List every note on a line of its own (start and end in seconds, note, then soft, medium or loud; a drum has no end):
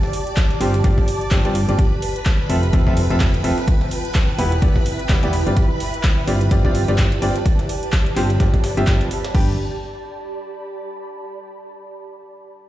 0.00 2.55 G4 medium
0.00 1.80 D5 medium
0.00 2.53 D5 medium
0.00 4.35 A5 medium
0.00 1.80 D6 medium
0.00 snare medium
0.13 closed hi-hat medium
0.13 open hi-hat loud
0.27 closed hi-hat medium
0.36 kick loud
0.36 snare loud
0.36 clap loud
0.36 closed hi-hat medium
0.51 closed hi-hat soft
0.61 0.82 G1 loud
0.61 0.72 C4 medium
0.61 0.72 F4 medium
0.61 0.72 G4 medium
0.61 0.72 C5 loud
0.61 closed hi-hat medium
0.61 open hi-hat loud
0.74 snare medium
0.74 closed hi-hat medium
0.84 0.93 G1 loud
0.84 0.95 C4 medium
0.84 0.95 F4 medium
0.84 0.95 G4 medium
0.84 0.95 D5 medium
0.84 kick loud
0.84 closed hi-hat medium
0.98 kick medium
0.98 snare medium
1.08 closed hi-hat medium
1.08 open hi-hat loud
1.21 closed hi-hat medium
1.31 1.42 G1 loud
1.31 1.43 C4 medium
1.31 1.43 F4 medium
1.31 1.43 G4 medium
1.31 1.43 D5 medium
1.31 kick loud
1.31 snare loud
1.31 clap loud
1.31 closed hi-hat medium
1.45 1.66 G2 loud
1.45 1.53 C4 medium
1.45 1.53 F4 medium
1.45 1.53 G4 medium
1.45 1.53 D5 loud
1.45 closed hi-hat soft
1.55 snare soft
1.55 closed hi-hat medium
1.55 open hi-hat loud
1.69 1.75 G1 loud
1.69 1.77 C4 medium
1.69 1.77 F4 medium
1.69 1.77 G4 medium
1.69 1.77 D5 medium
1.69 closed hi-hat soft
1.79 3.68 F4 medium
1.79 9.36 B4 medium
1.79 9.36 B5 medium
1.79 kick loud
1.79 closed hi-hat medium
2.00 6.94 G5 medium
2.00 closed hi-hat medium
2.00 open hi-hat loud
2.09 3.68 C4 medium
2.16 closed hi-hat medium
2.25 kick loud
2.25 snare loud
2.25 clap loud
2.25 closed hi-hat medium
2.50 2.71 F1 loud
2.50 2.61 C4 medium
2.50 2.61 F4 medium
2.50 2.61 A4 medium
2.50 2.61 E5 medium
2.50 closed hi-hat medium
2.50 open hi-hat loud
2.63 closed hi-hat medium
2.73 2.84 F1 loud
2.73 2.84 C4 loud
2.73 2.84 F4 medium
2.73 2.84 A4 medium
2.73 2.84 E5 loud
2.73 kick loud
2.73 closed hi-hat medium
2.87 3.08 F1 loud
2.87 3.01 C4 loud
2.87 3.01 F4 medium
2.87 3.01 A4 medium
2.87 3.01 E5 loud
2.87 kick medium
2.87 snare soft
2.97 closed hi-hat medium
2.97 open hi-hat loud
3.10 3.42 F1 loud
3.10 3.25 C4 medium
3.10 3.25 F4 medium
3.10 3.25 A4 medium
3.10 3.25 E5 medium
3.10 closed hi-hat soft
3.20 kick loud
3.20 snare loud
3.20 clap loud
3.20 closed hi-hat medium
3.34 closed hi-hat soft
3.44 3.53 F1 loud
3.44 3.55 C4 medium
3.44 3.55 F4 medium
3.44 3.55 A4 medium
3.44 3.55 E5 medium
3.44 closed hi-hat medium
3.44 open hi-hat loud
3.58 snare medium
3.58 closed hi-hat medium
3.68 6.77 E4 medium
3.68 kick loud
3.68 closed hi-hat medium
3.81 snare medium
3.91 5.33 B4 medium
3.91 closed hi-hat medium
3.91 open hi-hat loud
3.96 6.76 E5 medium
4.05 closed hi-hat medium
4.14 kick loud
4.14 snare loud
4.14 clap loud
4.14 closed hi-hat medium
4.38 4.60 E1 loud
4.38 4.50 B3 loud
4.38 4.50 E4 medium
4.38 4.50 G4 medium
4.38 4.50 B4 loud
4.38 closed hi-hat medium
4.38 open hi-hat loud
4.52 snare medium
4.52 closed hi-hat medium
4.62 4.71 E1 medium
4.62 4.73 B3 medium
4.62 4.73 E4 medium
4.62 4.73 G4 medium
4.62 4.73 D5 medium
4.62 kick loud
4.62 closed hi-hat medium
4.76 kick medium
4.76 snare medium
4.86 closed hi-hat medium
4.86 open hi-hat loud
4.99 closed hi-hat medium
5.09 5.20 E1 loud
5.09 5.21 B3 medium
5.09 5.21 E4 medium
5.09 5.21 G4 medium
5.09 5.21 D5 medium
5.09 kick loud
5.09 snare loud
5.09 clap loud
5.09 closed hi-hat medium
5.23 5.44 E1 loud
5.23 5.31 B3 loud
5.23 5.31 E4 medium
5.23 5.31 G4 medium
5.23 5.31 D5 loud
5.23 closed hi-hat soft
5.33 9.33 G4 medium
5.33 snare soft
5.33 closed hi-hat medium
5.33 open hi-hat loud
5.47 5.58 G1 loud
5.47 5.61 C4 medium
5.47 5.61 F4 medium
5.47 5.61 G4 medium
5.47 9.35 D5 medium
5.47 5.61 D5 medium
5.47 closed hi-hat medium
5.57 kick loud
5.57 closed hi-hat medium
5.80 closed hi-hat medium
5.80 open hi-hat loud
5.90 9.35 A5 medium
5.94 closed hi-hat medium
6.03 kick loud
6.03 snare loud
6.03 clap loud
6.03 closed hi-hat medium
6.27 6.49 G1 loud
6.27 6.39 C4 medium
6.27 6.39 F4 medium
6.27 6.39 G4 medium
6.27 6.39 D5 medium
6.27 closed hi-hat medium
6.27 open hi-hat loud
6.41 closed hi-hat medium
6.51 6.62 G1 loud
6.51 6.62 C4 loud
6.51 6.62 F4 medium
6.51 6.62 G4 medium
6.51 6.62 D5 loud
6.51 kick loud
6.51 closed hi-hat medium
6.65 6.86 G1 loud
6.65 6.79 C4 loud
6.65 6.79 F4 medium
6.65 6.79 G4 medium
6.65 6.79 D5 loud
6.65 kick medium
6.65 snare soft
6.75 closed hi-hat medium
6.75 open hi-hat loud
6.88 7.20 G1 loud
6.88 7.03 C4 medium
6.88 7.03 F4 medium
6.88 7.03 G4 medium
6.88 7.03 D5 loud
6.88 closed hi-hat medium
6.98 kick loud
6.98 snare loud
6.98 clap loud
6.98 closed hi-hat medium
7.12 closed hi-hat soft
7.22 7.30 G1 loud
7.22 7.33 C4 medium
7.22 7.33 F4 medium
7.22 7.33 G4 medium
7.22 7.33 D5 loud
7.22 closed hi-hat medium
7.22 open hi-hat loud
7.36 snare soft
7.36 closed hi-hat medium
7.46 kick loud
7.46 closed hi-hat medium
7.59 snare medium
7.59 closed hi-hat soft
7.69 closed hi-hat medium
7.69 open hi-hat loud
7.83 closed hi-hat medium
7.92 kick loud
7.92 snare loud
7.92 clap loud
7.92 closed hi-hat medium
8.06 closed hi-hat soft
8.16 8.38 G1 loud
8.16 8.28 C4 medium
8.16 8.28 F4 medium
8.16 8.28 G4 medium
8.16 8.28 C5 loud
8.16 clap soft
8.16 closed hi-hat medium
8.16 open hi-hat loud
8.30 snare medium
8.30 closed hi-hat medium
8.40 8.49 G1 loud
8.40 8.51 C4 medium
8.40 8.51 F4 medium
8.40 8.51 G4 medium
8.40 8.51 D5 medium
8.40 kick loud
8.40 snare loud
8.40 closed hi-hat medium
8.54 kick medium
8.54 snare medium
8.54 closed hi-hat soft
8.64 snare loud
8.64 closed hi-hat medium
8.64 open hi-hat loud
8.77 8.85 G1 loud
8.77 8.86 C4 medium
8.77 8.86 F4 medium
8.77 8.86 G4 medium
8.77 8.86 E5 loud
8.77 closed hi-hat medium
8.87 9.02 G1 medium
8.87 9.04 C4 medium
8.87 9.04 F4 medium
8.87 9.04 D5 medium
8.87 kick loud
8.87 snare loud
8.87 clap loud
8.87 closed hi-hat medium
9.01 closed hi-hat soft
9.11 snare soft
9.11 closed hi-hat medium
9.11 open hi-hat loud
9.25 snare loud
9.25 closed hi-hat medium
9.35 9.57 G1 loud
9.35 9.53 D4 medium
9.35 9.53 G4 medium
9.35 11.20 G4 medium
9.35 9.53 B4 medium
9.35 9.53 G5 loud
9.35 kick loud
9.35 crash medium
9.43 11.20 D5 medium
9.50 11.20 A5 medium
9.56 11.20 B5 medium